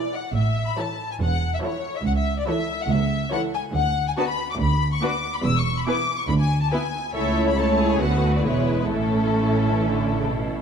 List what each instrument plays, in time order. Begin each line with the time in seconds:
Already playing: viola section E3 E4, violin section G#4 B4 D5
0.14 violin section F#5
0.35 double bass section A1, cello section A2, violin section E5
0.67 violin section B5
0.77 viola section E3 E4, violin section A4 C#5 A5
1.11 violin section G#5
1.20 double bass section E1, cello section E2, violin section F#5
1.54 violin section E5
1.62 viola section E3 E4, violin section A4 C#5
1.97 violin section E5
2.04 cello section C#2, double bass section C#2, violin section F#5
2.17 violin section E5
2.39 violin section D5
2.47 viola section E3 E4, violin section A4 C#5 E5
2.81 violin section F#5
2.90 cello section C#2, double bass section C#2, violin section E5
3.32 viola section E3 E4, violin section A4 C#5 F#5
3.54 violin section G#5
3.74 cello section D2, double bass section D2, violin section F#5
4.08 violin section G#5
4.17 viola section B3 D4, violin section F#4 B4 A5
4.28 violin section B5
4.51 violin section D6
4.59 cello section D2, double bass section D2, violin section B5
4.93 violin section C#6
5.02 viola section B3 D4, violin section F#4 B4 D6
5.35 violin section B5
5.44 double bass section E1, cello section E2, violin section E6
5.58 violin section C#6
5.79 violin section B5
5.87 viola section B3 E4, violin section G#4 B4 D6
6.20 violin section C#6
6.29 cello section D2, double bass section D2, violin section B5
6.40 violin section G#5
6.62 violin section A5
6.72 viola section B3 E4, violin section E4 B4 G#5
7.14 double bass section C#2, cello section C#2, viola section A3 E4, violin section A4 C#5 E5
7.48 violin section B5
7.57 viola section A3 E4, violin section A4 C#5 A5
7.79 violin section G#4
7.92 violin section G#5
8.01 double bass section D2, cello section D2, viola section A3 B3, violin section F#4 B4 F#5
8.36 violin section D5
8.45 double bass section E1, cello section E2, viola section G#3 B3, violin section E4 B4 C#5
8.81 violin section B4
8.91 double bass section A1, cello section A2, viola section A3 C#4, violin section E4 A4
9.38 cello section A2
9.73 cello section E3
9.84 cello section D3
10.19 cello section C#3
10.31 cello section B2